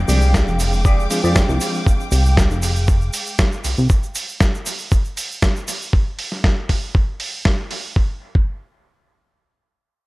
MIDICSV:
0, 0, Header, 1, 7, 480
1, 0, Start_track
1, 0, Tempo, 508475
1, 1760, Time_signature, 4, 2, 24, 8
1, 9504, End_track
2, 0, Start_track
2, 0, Title_t, "String section"
2, 0, Program_c, 0, 48
2, 0, Note_on_c, 0, 56, 78
2, 0, Note_on_c, 0, 77, 71
2, 0, Note_on_c, 0, 79, 70
2, 0, Note_on_c, 0, 86, 85
2, 3643, Note_off_c, 0, 77, 0
2, 3644, Note_off_c, 0, 56, 0
2, 3644, Note_off_c, 0, 79, 0
2, 3644, Note_off_c, 0, 86, 0
2, 9504, End_track
3, 0, Start_track
3, 0, Title_t, "Clean electric guitar"
3, 0, Program_c, 1, 27
3, 79, Note_on_c, 1, 74, 97
3, 83, Note_on_c, 1, 68, 73
3, 85, Note_on_c, 1, 67, 73
3, 445, Note_off_c, 1, 67, 0
3, 446, Note_off_c, 1, 68, 0
3, 446, Note_off_c, 1, 74, 0
3, 799, Note_on_c, 1, 67, 77
3, 803, Note_on_c, 1, 68, 73
3, 809, Note_on_c, 1, 74, 77
3, 983, Note_off_c, 1, 67, 0
3, 983, Note_off_c, 1, 68, 0
3, 984, Note_off_c, 1, 74, 0
3, 1169, Note_on_c, 1, 74, 92
3, 1172, Note_on_c, 1, 68, 77
3, 1175, Note_on_c, 1, 67, 71
3, 1345, Note_off_c, 1, 67, 0
3, 1345, Note_off_c, 1, 68, 0
3, 1345, Note_off_c, 1, 74, 0
3, 9504, End_track
4, 0, Start_track
4, 0, Title_t, "Reed electric piano"
4, 0, Program_c, 2, 4
4, 0, Note_on_c, 2, 53, 78
4, 0, Note_on_c, 2, 56, 71
4, 0, Note_on_c, 2, 60, 69
4, 0, Note_on_c, 2, 62, 74
4, 0, Note_on_c, 2, 79, 91
4, 1008, Note_off_c, 2, 53, 0
4, 1011, Note_off_c, 2, 56, 0
4, 1014, Note_off_c, 2, 60, 0
4, 1016, Note_off_c, 2, 62, 0
4, 1016, Note_off_c, 2, 79, 0
4, 1039, Note_on_c, 2, 53, 77
4, 1042, Note_on_c, 2, 56, 73
4, 1043, Note_on_c, 2, 60, 73
4, 1045, Note_on_c, 2, 62, 72
4, 1047, Note_on_c, 2, 68, 88
4, 1252, Note_off_c, 2, 53, 0
4, 1253, Note_off_c, 2, 56, 0
4, 1254, Note_off_c, 2, 60, 0
4, 1255, Note_off_c, 2, 62, 0
4, 1256, Note_off_c, 2, 68, 0
4, 1272, Note_on_c, 2, 53, 82
4, 1276, Note_on_c, 2, 56, 71
4, 1279, Note_on_c, 2, 60, 75
4, 1281, Note_on_c, 2, 62, 77
4, 1284, Note_on_c, 2, 79, 89
4, 1728, Note_off_c, 2, 53, 0
4, 1730, Note_off_c, 2, 56, 0
4, 1732, Note_off_c, 2, 60, 0
4, 1733, Note_off_c, 2, 62, 0
4, 1734, Note_off_c, 2, 79, 0
4, 9504, End_track
5, 0, Start_track
5, 0, Title_t, "Analog synth bass"
5, 0, Program_c, 3, 38
5, 76, Note_on_c, 3, 36, 93
5, 409, Note_off_c, 3, 36, 0
5, 445, Note_on_c, 3, 29, 87
5, 1008, Note_off_c, 3, 29, 0
5, 1167, Note_on_c, 3, 41, 78
5, 1363, Note_off_c, 3, 41, 0
5, 1406, Note_on_c, 3, 36, 97
5, 1501, Note_off_c, 3, 36, 0
5, 2000, Note_on_c, 3, 36, 91
5, 2331, Note_off_c, 3, 36, 0
5, 2365, Note_on_c, 3, 29, 84
5, 2928, Note_off_c, 3, 29, 0
5, 3441, Note_on_c, 3, 36, 43
5, 3541, Note_off_c, 3, 36, 0
5, 3568, Note_on_c, 3, 36, 79
5, 3661, Note_off_c, 3, 36, 0
5, 9504, End_track
6, 0, Start_track
6, 0, Title_t, "Muted clean electric guitar strokes"
6, 1522, Note_on_c, 9, 29, 32
6, 1617, Note_off_c, 9, 29, 0
6, 9504, End_track
7, 0, Start_track
7, 0, Title_t, "Drums"
7, 79, Note_on_c, 9, 82, 84
7, 86, Note_on_c, 9, 46, 97
7, 174, Note_off_c, 9, 82, 0
7, 180, Note_off_c, 9, 46, 0
7, 203, Note_on_c, 9, 82, 38
7, 297, Note_off_c, 9, 82, 0
7, 322, Note_on_c, 9, 36, 111
7, 324, Note_on_c, 9, 38, 119
7, 325, Note_on_c, 9, 82, 51
7, 416, Note_off_c, 9, 36, 0
7, 419, Note_off_c, 9, 38, 0
7, 419, Note_off_c, 9, 82, 0
7, 451, Note_on_c, 9, 82, 26
7, 545, Note_off_c, 9, 82, 0
7, 562, Note_on_c, 9, 82, 95
7, 565, Note_on_c, 9, 46, 91
7, 656, Note_off_c, 9, 82, 0
7, 659, Note_off_c, 9, 46, 0
7, 687, Note_on_c, 9, 82, 33
7, 782, Note_off_c, 9, 82, 0
7, 801, Note_on_c, 9, 82, 44
7, 802, Note_on_c, 9, 36, 113
7, 895, Note_off_c, 9, 82, 0
7, 896, Note_off_c, 9, 36, 0
7, 944, Note_on_c, 9, 82, 25
7, 1038, Note_off_c, 9, 82, 0
7, 1043, Note_on_c, 9, 46, 99
7, 1045, Note_on_c, 9, 82, 85
7, 1137, Note_off_c, 9, 46, 0
7, 1140, Note_off_c, 9, 82, 0
7, 1174, Note_on_c, 9, 82, 40
7, 1269, Note_off_c, 9, 82, 0
7, 1280, Note_on_c, 9, 82, 51
7, 1282, Note_on_c, 9, 36, 116
7, 1282, Note_on_c, 9, 38, 120
7, 1374, Note_off_c, 9, 82, 0
7, 1376, Note_off_c, 9, 36, 0
7, 1376, Note_off_c, 9, 38, 0
7, 1410, Note_on_c, 9, 82, 24
7, 1504, Note_off_c, 9, 82, 0
7, 1516, Note_on_c, 9, 82, 88
7, 1521, Note_on_c, 9, 46, 100
7, 1610, Note_off_c, 9, 82, 0
7, 1616, Note_off_c, 9, 46, 0
7, 1647, Note_on_c, 9, 82, 35
7, 1742, Note_off_c, 9, 82, 0
7, 1761, Note_on_c, 9, 36, 113
7, 1769, Note_on_c, 9, 82, 52
7, 1855, Note_off_c, 9, 36, 0
7, 1864, Note_off_c, 9, 82, 0
7, 1891, Note_on_c, 9, 82, 24
7, 1985, Note_off_c, 9, 82, 0
7, 1997, Note_on_c, 9, 82, 85
7, 2002, Note_on_c, 9, 46, 98
7, 2092, Note_off_c, 9, 82, 0
7, 2097, Note_off_c, 9, 46, 0
7, 2132, Note_on_c, 9, 82, 40
7, 2226, Note_off_c, 9, 82, 0
7, 2240, Note_on_c, 9, 36, 119
7, 2240, Note_on_c, 9, 38, 116
7, 2247, Note_on_c, 9, 82, 48
7, 2334, Note_off_c, 9, 38, 0
7, 2335, Note_off_c, 9, 36, 0
7, 2342, Note_off_c, 9, 82, 0
7, 2366, Note_on_c, 9, 82, 26
7, 2460, Note_off_c, 9, 82, 0
7, 2477, Note_on_c, 9, 82, 89
7, 2482, Note_on_c, 9, 46, 99
7, 2571, Note_off_c, 9, 82, 0
7, 2577, Note_off_c, 9, 46, 0
7, 2607, Note_on_c, 9, 82, 37
7, 2701, Note_off_c, 9, 82, 0
7, 2714, Note_on_c, 9, 82, 48
7, 2720, Note_on_c, 9, 36, 113
7, 2809, Note_off_c, 9, 82, 0
7, 2814, Note_off_c, 9, 36, 0
7, 2843, Note_on_c, 9, 82, 27
7, 2938, Note_off_c, 9, 82, 0
7, 2957, Note_on_c, 9, 82, 83
7, 2960, Note_on_c, 9, 46, 107
7, 3052, Note_off_c, 9, 82, 0
7, 3054, Note_off_c, 9, 46, 0
7, 3085, Note_on_c, 9, 82, 39
7, 3179, Note_off_c, 9, 82, 0
7, 3195, Note_on_c, 9, 82, 50
7, 3199, Note_on_c, 9, 38, 123
7, 3200, Note_on_c, 9, 36, 118
7, 3289, Note_off_c, 9, 82, 0
7, 3294, Note_off_c, 9, 36, 0
7, 3294, Note_off_c, 9, 38, 0
7, 3325, Note_on_c, 9, 82, 24
7, 3420, Note_off_c, 9, 82, 0
7, 3439, Note_on_c, 9, 82, 81
7, 3441, Note_on_c, 9, 46, 101
7, 3534, Note_off_c, 9, 82, 0
7, 3535, Note_off_c, 9, 46, 0
7, 3562, Note_on_c, 9, 82, 37
7, 3657, Note_off_c, 9, 82, 0
7, 3675, Note_on_c, 9, 82, 52
7, 3680, Note_on_c, 9, 36, 115
7, 3769, Note_off_c, 9, 82, 0
7, 3774, Note_off_c, 9, 36, 0
7, 3808, Note_on_c, 9, 82, 26
7, 3902, Note_off_c, 9, 82, 0
7, 3918, Note_on_c, 9, 82, 92
7, 3922, Note_on_c, 9, 46, 101
7, 4012, Note_off_c, 9, 82, 0
7, 4017, Note_off_c, 9, 46, 0
7, 4048, Note_on_c, 9, 82, 37
7, 4142, Note_off_c, 9, 82, 0
7, 4158, Note_on_c, 9, 38, 110
7, 4160, Note_on_c, 9, 36, 122
7, 4160, Note_on_c, 9, 82, 51
7, 4252, Note_off_c, 9, 38, 0
7, 4254, Note_off_c, 9, 82, 0
7, 4255, Note_off_c, 9, 36, 0
7, 4294, Note_on_c, 9, 82, 25
7, 4388, Note_off_c, 9, 82, 0
7, 4398, Note_on_c, 9, 82, 94
7, 4400, Note_on_c, 9, 46, 98
7, 4493, Note_off_c, 9, 82, 0
7, 4495, Note_off_c, 9, 46, 0
7, 4520, Note_on_c, 9, 82, 36
7, 4615, Note_off_c, 9, 82, 0
7, 4635, Note_on_c, 9, 82, 48
7, 4642, Note_on_c, 9, 36, 114
7, 4730, Note_off_c, 9, 82, 0
7, 4736, Note_off_c, 9, 36, 0
7, 4765, Note_on_c, 9, 82, 24
7, 4860, Note_off_c, 9, 82, 0
7, 4882, Note_on_c, 9, 46, 99
7, 4885, Note_on_c, 9, 82, 82
7, 4976, Note_off_c, 9, 46, 0
7, 4979, Note_off_c, 9, 82, 0
7, 5018, Note_on_c, 9, 82, 41
7, 5112, Note_off_c, 9, 82, 0
7, 5119, Note_on_c, 9, 82, 50
7, 5121, Note_on_c, 9, 36, 115
7, 5121, Note_on_c, 9, 38, 115
7, 5213, Note_off_c, 9, 82, 0
7, 5215, Note_off_c, 9, 36, 0
7, 5215, Note_off_c, 9, 38, 0
7, 5250, Note_on_c, 9, 82, 27
7, 5344, Note_off_c, 9, 82, 0
7, 5360, Note_on_c, 9, 82, 90
7, 5361, Note_on_c, 9, 46, 101
7, 5455, Note_off_c, 9, 46, 0
7, 5455, Note_off_c, 9, 82, 0
7, 5494, Note_on_c, 9, 82, 38
7, 5588, Note_off_c, 9, 82, 0
7, 5600, Note_on_c, 9, 36, 113
7, 5694, Note_off_c, 9, 36, 0
7, 5840, Note_on_c, 9, 46, 97
7, 5934, Note_off_c, 9, 46, 0
7, 5964, Note_on_c, 9, 38, 31
7, 6059, Note_off_c, 9, 38, 0
7, 6080, Note_on_c, 9, 36, 110
7, 6080, Note_on_c, 9, 38, 103
7, 6174, Note_off_c, 9, 36, 0
7, 6174, Note_off_c, 9, 38, 0
7, 6317, Note_on_c, 9, 46, 97
7, 6319, Note_on_c, 9, 36, 60
7, 6412, Note_off_c, 9, 46, 0
7, 6413, Note_off_c, 9, 36, 0
7, 6559, Note_on_c, 9, 36, 105
7, 6653, Note_off_c, 9, 36, 0
7, 6795, Note_on_c, 9, 46, 98
7, 6889, Note_off_c, 9, 46, 0
7, 7035, Note_on_c, 9, 38, 110
7, 7038, Note_on_c, 9, 36, 113
7, 7129, Note_off_c, 9, 38, 0
7, 7132, Note_off_c, 9, 36, 0
7, 7275, Note_on_c, 9, 46, 96
7, 7369, Note_off_c, 9, 46, 0
7, 7516, Note_on_c, 9, 36, 94
7, 7611, Note_off_c, 9, 36, 0
7, 7883, Note_on_c, 9, 36, 98
7, 7978, Note_off_c, 9, 36, 0
7, 9504, End_track
0, 0, End_of_file